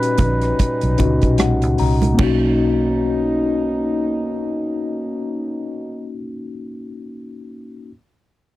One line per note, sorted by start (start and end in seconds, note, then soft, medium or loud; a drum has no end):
0.00 0.98 A#2 medium
0.00 2.04 G3 medium
0.00 0.99 C#4 medium
0.00 2.04 C#4 medium
0.00 0.10 D#4 medium
0.00 2.04 D#4 medium
0.00 0.11 F#4 medium
0.00 1.37 B4 medium
0.00 2.04 B4 medium
0.00 closed hi-hat medium
0.18 0.52 A#1 medium
0.18 kick medium
0.18 closed hi-hat medium
0.18 muted conga soft
0.18 low conga medium
0.41 cross-stick soft
0.41 closed hi-hat soft
0.59 kick medium
0.59 closed hi-hat medium
0.59 muted conga soft
0.81 0.97 B1 medium
0.81 closed hi-hat soft
0.98 1.19 C#2 medium
0.98 1.81 A#2 medium
0.98 1.81 C#4 medium
0.98 1.82 D#4 medium
0.98 1.82 F#4 medium
0.98 1.37 D#5 medium
0.98 kick medium
0.98 closed hi-hat medium
0.98 muted conga soft
0.98 low conga medium
1.22 1.63 B1 medium
1.22 kick medium
1.22 closed hi-hat soft
1.38 1.76 F#5 medium
1.38 cross-stick medium
1.38 closed hi-hat medium
1.38 high conga medium
1.62 1.77 C#2 medium
1.62 closed hi-hat soft
1.78 2.13 C2 medium
1.78 2.17 A#5 medium
1.78 open hi-hat medium
2.02 closed hi-hat soft
2.02 high conga medium
2.14 6.13 A#3 medium
2.14 6.16 C#4 medium
2.19 6.19 B1 medium
2.19 6.16 B2 medium
2.19 6.17 A#3 medium
2.19 6.16 C#4 medium
2.19 6.20 D#4 medium
2.19 6.17 D#4 medium
2.19 kick medium
2.19 crash medium
2.19 muted conga medium
2.24 6.23 F#4 medium